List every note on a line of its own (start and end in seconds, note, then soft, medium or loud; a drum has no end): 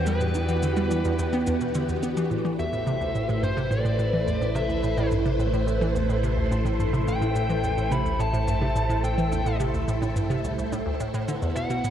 0.00 2.28 E2 medium
0.00 2.31 E3 medium
0.00 2.31 B3 medium
0.00 2.32 D4 medium
0.00 4.01 F#4 medium
0.00 3.71 G4 medium
0.00 2.32 D5 medium
0.06 0.15 G3 medium
0.06 1.71 B4 medium
0.06 cabasa medium
0.21 0.29 A2 medium
0.21 cabasa soft
0.34 0.47 E2 medium
0.34 low bongo soft
0.34 cabasa medium
0.49 0.57 E3 loud
0.49 cabasa soft
0.63 0.71 D3 medium
0.63 cabasa medium
0.77 0.85 G3 loud
0.77 cabasa soft
0.91 1.04 E3 medium
0.91 cabasa medium
1.05 1.13 E2 medium
1.05 cabasa soft
1.19 1.32 E2 medium
1.19 cabasa medium
1.33 1.41 B3 loud
1.33 low bongo soft
1.33 cabasa soft
1.47 1.55 E2 loud
1.47 cabasa medium
1.61 1.69 B2 medium
1.61 cabasa soft
1.74 1.80 D3 medium
1.74 cabasa medium
1.89 1.97 E2 medium
1.89 cabasa soft
2.03 2.15 B3 loud
2.03 cabasa medium
2.17 2.29 E3 loud
2.17 cabasa medium
2.31 11.25 A1 medium
2.31 2.43 A2 medium
2.31 11.28 A3 medium
2.31 low bongo soft
2.31 cabasa medium
2.45 2.53 E3 loud
2.45 cabasa soft
2.59 2.67 E2 medium
2.59 3.46 E5 loud
2.59 cabasa medium
2.70 2.78 A2 medium
2.70 11.90 E4 medium
2.70 11.28 C5 medium
2.70 cabasa soft
2.87 2.95 C3 medium
2.87 cabasa medium
3.01 3.09 D2 medium
3.01 low bongo soft
3.01 cabasa soft
3.15 3.28 A2 medium
3.15 7.85 B4 medium
3.15 cabasa medium
3.29 3.38 A2 loud
3.29 cabasa soft
3.43 3.51 G2 medium
3.43 3.72 C5 medium
3.43 cabasa medium
3.57 3.65 C3 loud
3.57 cabasa soft
3.71 3.84 A2 medium
3.71 4.56 D5 medium
3.71 low bongo soft
3.71 cabasa medium
3.85 3.93 A2 loud
3.85 cabasa soft
3.99 4.12 A2 medium
3.99 cabasa medium
4.13 4.22 E3 loud
4.27 4.36 E2 medium
4.27 cabasa medium
4.41 4.46 A2 medium
4.41 low bongo soft
4.41 cabasa soft
4.55 4.64 C3 medium
4.55 5.08 E5 medium
4.55 cabasa medium
4.69 4.78 D2 medium
4.69 cabasa soft
4.83 4.96 A2 medium
4.83 cabasa medium
4.98 5.06 A2 loud
4.98 cabasa medium
5.11 5.20 G2 medium
5.11 low bongo soft
5.11 cabasa medium
5.26 5.34 C3 medium
5.26 cabasa soft
5.39 5.52 A2 medium
5.39 cabasa medium
5.53 5.62 A2 loud
5.53 cabasa soft
5.67 5.80 A2 medium
5.67 cabasa medium
5.81 5.90 E3 loud
5.81 low bongo soft
5.81 cabasa soft
5.95 6.04 E2 medium
5.95 cabasa medium
6.09 6.14 A2 medium
6.09 cabasa soft
6.23 6.32 C3 loud
6.23 cabasa medium
6.37 6.46 D2 medium
6.51 6.64 A2 medium
6.51 low bongo soft
6.51 cabasa medium
6.65 6.74 A2 loud
6.65 cabasa medium
6.79 6.88 G2 medium
6.79 cabasa medium
6.93 7.02 C3 medium
6.93 cabasa soft
7.07 7.20 A2 medium
7.07 7.95 G5 medium
7.07 cabasa medium
7.21 7.30 A2 loud
7.21 low bongo soft
7.21 cabasa medium
7.35 7.48 A2 medium
7.35 cabasa medium
7.49 7.58 E3 loud
7.49 cabasa soft
7.63 7.72 E2 medium
7.63 cabasa medium
7.68 11.28 A4 medium
7.77 7.83 A2 medium
7.77 cabasa medium
7.91 8.00 C3 loud
7.91 8.21 B5 loud
7.91 low bongo soft
7.91 cabasa medium
8.05 8.14 D2 medium
8.05 cabasa soft
8.19 8.32 A2 medium
8.19 9.04 A5 loud
8.19 cabasa medium
8.33 8.42 A2 loud
8.33 cabasa medium
8.48 8.56 G2 medium
8.48 cabasa medium
8.61 8.70 C3 loud
8.61 low bongo soft
8.76 8.88 A2 medium
8.76 cabasa medium
8.89 8.98 A2 loud
8.89 cabasa medium
9.04 9.16 A2 medium
9.04 9.56 G5 medium
9.04 cabasa medium
9.18 9.26 E3 loud
9.18 cabasa soft
9.32 9.40 E2 medium
9.32 low bongo soft
9.32 cabasa medium
9.46 9.51 A2 medium
9.46 cabasa medium
9.60 9.68 C3 loud
9.60 cabasa medium
9.74 9.82 D2 medium
9.74 cabasa soft
9.88 10.01 A2 medium
9.88 cabasa medium
10.02 10.10 A2 loud
10.02 low bongo soft
10.02 cabasa medium
10.16 10.24 G2 medium
10.16 cabasa medium
10.30 10.38 C3 loud
10.30 cabasa soft
10.44 10.49 C2 medium
10.44 cabasa medium
10.58 10.71 C2 medium
10.58 cabasa medium
10.72 10.85 A2 medium
10.72 low bongo soft
10.72 cabasa medium
10.86 10.94 D2 medium
11.00 11.09 A2 medium
11.00 cabasa medium
11.14 11.23 A2 loud
11.14 cabasa medium
11.28 11.90 B1 medium
11.28 11.37 D3 loud
11.28 11.90 B3 medium
11.28 low bongo soft
11.28 cabasa medium
11.42 11.51 E2 medium
11.42 cabasa soft
11.56 11.69 B2 medium
11.56 11.90 F#5 loud
11.56 cabasa medium
11.70 11.79 B2 loud
11.70 11.90 F#4 medium
11.70 cabasa medium
11.84 11.90 A2 medium
11.84 cabasa medium